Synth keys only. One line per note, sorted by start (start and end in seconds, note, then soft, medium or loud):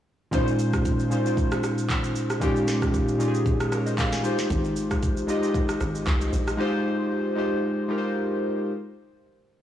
0.31 0.96 A#2 loud
0.31 0.96 G#3 loud
0.31 0.96 C#4 medium
0.31 0.97 D#4 loud
0.31 0.97 F4 loud
0.31 0.97 C5 loud
1.10 1.22 A#2 medium
1.10 1.22 G#3 medium
1.10 1.22 C#4 medium
1.10 1.23 D#4 medium
1.10 1.23 F4 medium
1.10 1.23 C5 medium
1.24 2.08 A#2 medium
1.24 2.08 G#3 medium
1.24 2.08 C#4 medium
1.24 2.09 D#4 medium
1.24 2.09 F4 medium
1.24 2.09 C5 medium
2.40 3.04 A#2 loud
2.40 3.05 G#3 loud
2.40 3.05 C#4 loud
2.40 3.05 D#4 loud
2.40 3.06 F4 loud
2.40 3.06 G4 loud
3.18 3.62 A#2 medium
3.18 3.62 G#3 medium
3.18 3.62 C#4 medium
3.18 3.63 D#4 medium
3.18 3.63 F4 medium
3.18 3.28 G4 medium
3.28 3.67 G#4 loud
3.72 3.86 A#4 medium
3.72 3.86 C#5 medium
3.86 3.98 C5 medium
3.86 3.97 D#5 medium
3.98 4.12 C#5 medium
3.98 4.12 F5 medium
4.12 4.38 F5 medium
4.12 4.37 G#5 medium
4.23 5.07 G#3 medium
4.23 5.08 D#4 medium
4.23 5.08 F4 medium
4.23 5.09 G4 medium
4.23 5.09 C5 loud
5.27 5.39 G#3 medium
5.27 5.40 D#4 medium
5.27 5.40 F4 medium
5.27 5.40 G4 medium
5.27 5.41 D#5 loud
5.41 6.25 G#3 medium
5.41 6.25 D#4 medium
5.41 6.26 F4 medium
5.41 6.26 G4 medium
5.41 6.27 D#5 medium
6.57 7.22 G#3 loud
6.57 7.22 D#4 loud
6.57 7.23 F4 loud
6.57 7.23 G4 loud
6.57 7.23 C5 loud
7.35 7.79 G#3 medium
7.35 7.80 D#4 medium
7.35 7.80 F4 medium
7.35 7.80 G4 medium
7.35 7.81 C5 loud
7.88 8.53 G#3 medium
7.88 8.53 D#4 medium
7.88 8.53 F4 medium
7.88 8.54 G4 medium
7.88 7.97 A#4 medium
7.98 8.57 C5 loud